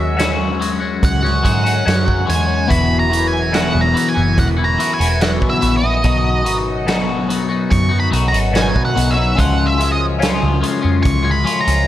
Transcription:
Already playing: D#2 F#2 F#3 G#3 C#4 F#4 E5
0.17 F#3 G#3 C#4 F#4, snare, closed hi-hat
0.60 F#3 G#3 C#4 F#4, closed hi-hat
0.80 G#3 C#4 F#4
1.03 C#2 F#5, kick, closed hi-hat
1.23 G#3 C#4 F#4, snare
1.42 G#2 F#3 G#3 C#4 F#4, kick, closed hi-hat
1.64 G#3 C#4 F#4, closed hi-hat
1.85 F#2 F#3 G#3 C#4 F#4, snare, closed hi-hat
2.05 G#3 C#4 F#4, kick
2.26 E2 F#3 G#3 C#4 F#4 G#5, closed hi-hat
2.46 G#3 C#4 F#4
2.67 E2 F#2 B2 E3 B3 E4 F#4 B5, kick
2.71 E1, closed hi-hat
2.99 A#5
3.09 E3 B3 E4 F#4, closed hi-hat
3.28 G#5
3.51 E2 B2 E3 B3 E4 F#4 F#5, snare, closed hi-hat
3.75 E1
3.81 A#5
3.94 E3 B3 E4 F#4, closed hi-hat
4.09 G#5
4.14 F#1 E3 B3 E4 F#4
4.38 E1 F#5, kick, closed hi-hat
4.57 E3 B3 E4 F#4
4.64 A#5
4.78 E3 B3 E4 F#4, closed hi-hat
4.94 G#5
5.00 E1 E3 B3 E4 F#4, closed hi-hat
5.20 E2 B2 E3 B3 E4 F#4 F#5, snare, closed hi-hat
5.40 E3 B3 E4 F#4, kick
5.50 E5
5.61 A#1 E3 B3 E4 F#4, closed hi-hat
5.77 D#5
5.82 E3 B3 E4 F#4
6.04 B1 B2 F#3 B3 D#4 F#4, kick, closed hi-hat
6.44 G#1 F#3 B3 D#4 F#4, closed hi-hat
6.86 B2 F#3 B3 D#4 F#4, snare, closed hi-hat
7.29 F#3 B3 D#4 F#4, closed hi-hat
7.49 B3 D#4 F#4
7.71 F#2 C#6, kick, closed hi-hat
7.89 B3 D#4 F#4
8.00 B5
8.11 B1 F#3 B3 D#4 F#4, closed hi-hat
8.28 F#4 A#5
8.33 G#1 B3 D#4, closed hi-hat
8.52 B2 F#3 B3 D#4 F#4, snare, closed hi-hat
8.56 G#5
8.74 B2 B3 D#4 F#4, kick
8.85 F#5
8.95 B1 F#3 B3 D#4 F#4, closed hi-hat
9.11 F#4 E5
9.16 B3 D#4
9.36 C#2 C#3 F3 G#3 C#4 F4, kick, closed hi-hat
9.40 F#5
9.67 E5
9.78 F3 G#3 C#4 F4, closed hi-hat
9.92 D#5
10.19 C#3 F3 G#3 C#4 F4, closed hi-hat
10.23 snare
10.43 C#2
10.60 F3 G#3 C#4 F4, closed hi-hat
10.81 F2 G#3 C#4 F4
11.03 C#2 C#6, kick, closed hi-hat
11.23 G#3 C#4 F4
11.31 B5
11.44 F3 G#3 C#4 F4, closed hi-hat
11.61 A#5
11.65 C#2 G#3 C#4 F4, closed hi-hat

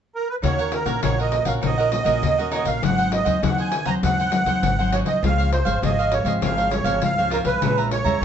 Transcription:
0.15 A#4
0.29 B4
0.42 D#2 D#3 A#3 C#4 D#4 F#4 A#4 C#5 F#5, pandeiro
0.58 A#4 C#5 F#5, pandeiro
0.72 A#4, muted cavaquinho stroke, pandeiro
0.86 A#1 A#3 C#4 F#4 A#4 C#5 F#5, pandeiro
1.02 A#1 A#2 A#3 C#4 D#4 F#4 A#4 C#5 F#5, pandeiro
1.18 A#4 C#5 D#5 F#5, pandeiro
1.32 pandeiro
1.45 A#1 A#3 C#4 F#4 A#4 C#5 F5 F#5, pandeiro
1.61 A#1 D#3 D#4 A#4 C#5 D#5 F#5, pandeiro
1.78 A#4 C#5 F#5, pandeiro
1.91 A#3 C#4 F#4, muted cavaquinho stroke, pandeiro
2.04 A#1 A#3 C#4 F#4 A#4 C#5 F#5, pandeiro
2.22 D#2 A#2, pandeiro
2.38 A#3 C#4 F#4 A#4 C#5 F#5, pandeiro
2.51 D#4 A#4 C#5 D#5 F#5, pandeiro
2.65 A#1 A#4 C#5 F5 F#5, pandeiro
2.82 G#1 G#2 F#3 C4 D#4 F#4 G#4 C5 F#5, pandeiro
2.98 G#4 C5 F#5, pandeiro
3.11 D#5, muted cavaquinho stroke, pandeiro
3.25 D#2 F#3 C4 D#4 G#4 C5 F#5, pandeiro
3.42 D#2 D#3 F#3 C4 D#4 F#4 G#4 C5 F#5, pandeiro
3.58 G#4 C5 F#5 G#5, pandeiro
3.72 pandeiro
3.85 D#2 F#3 C4 D#4 G#4 C5 F#5 A#5, pandeiro
4.03 D#2 G#2 F#4 G#4 C5 F#5, pandeiro
4.19 G#4 C5 F#5, pandeiro
4.31 F#3 C4 D#4, muted cavaquinho stroke, pandeiro
4.45 D#2 F#3 C4 D#4 G#4 C5 F#5, pandeiro
4.62 G#1 D#3, pandeiro
4.79 F#3 C4 D#4 G#4 C5 F#5, pandeiro
4.92 F#4 G#4 C5 C#5 F#5, pandeiro
5.05 C2 G#4 C5 D#5 F#5, pandeiro
5.22 C#2 C#3 F3 G#3 C4 F4 C5 C#5 F5, pandeiro
5.38 C5 C#5 F5, pandeiro
5.51 C5, muted cavaquinho stroke, pandeiro
5.65 G#1 F3 G#3 C4 C5 C#5 F5, pandeiro
5.82 G#1 G#2 F3 G#3 C4 F4 C5 C#5 D#5 F5, pandeiro
5.99 C5 C#5 F5, pandeiro
6.12 C#5, pandeiro
6.24 G#1 F3 G#3 C4 C5 C#5 D#5 F5, pandeiro
6.41 G#1 C#3 F4 C5 C#5 F5, pandeiro
6.57 C5 C#5 F5, pandeiro
6.70 F3 G#3 C4 C#5, muted cavaquinho stroke, pandeiro
6.84 G#1 F3 G#3 C4 C5 C#5 F5, pandeiro
7.02 C#2 G#2 F5, pandeiro
7.18 F3 G#3 C4 C5 C#5 F5, pandeiro
7.30 F4 A#4 C5 C#5 F5, pandeiro
7.44 C2 B4 C5 C#5 F5, pandeiro
7.61 A#1 A#2 E3 G#3 C#4 G#4 C#5 E5 A#5, pandeiro
7.77 C#5 E5 A#5, pandeiro
7.91 C#5, muted cavaquinho stroke, pandeiro
8.04 E2 E3 G#3 C#4 C#5 E5 A#5, pandeiro
8.21 E2 G#4 C#5

